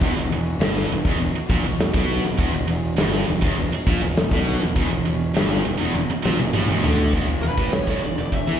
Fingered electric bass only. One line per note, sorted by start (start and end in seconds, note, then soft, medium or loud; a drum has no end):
0.01 0.15 E1 loud
0.16 0.30 E1 medium
0.31 0.59 E1 medium
0.60 0.88 G1 medium
0.90 1.04 E1 medium
1.05 1.19 E1 medium
1.20 1.34 E1 medium
1.35 muted fingered electric bass stroke soft
1.50 1.63 A#1 loud
1.64 1.78 E1 medium
1.79 1.93 E1 medium
1.94 2.22 B1 loud
2.25 2.38 E1 medium
2.38 2.53 E1 medium
2.54 2.68 E1 medium
2.69 2.96 E1 medium
2.98 3.26 G1 medium
3.28 3.42 E1 medium
3.42 3.56 E1 medium
3.57 3.71 E1 medium
3.73 muted fingered electric bass stroke soft
3.87 4.01 A#1 loud
4.03 4.16 E1 medium
4.17 4.31 E1 medium
4.31 4.59 B1 loud
4.63 4.75 E1 medium
4.76 4.90 E1 medium
4.92 5.06 E1 medium
5.07 5.34 E1 medium
5.37 5.64 G1 medium
5.66 5.80 E1 medium
5.81 5.94 E1 medium
5.96 6.09 E1 medium
6.11 muted fingered electric bass stroke soft
6.25 6.39 A#1 loud
6.40 6.54 E1 medium
6.56 6.69 A1 loud
6.70 6.83 E1 medium
6.84 7.12 D2 loud
7.14 7.27 E1 medium
7.29 7.43 E1 medium
7.44 7.57 E1 medium
7.58 7.72 A1 medium
7.74 7.87 E1 medium
7.87 8.01 E1 medium
8.04 8.17 E1 medium
8.18 8.31 E1 medium
8.32 8.46 E1 medium
8.47 8.60 E2 medium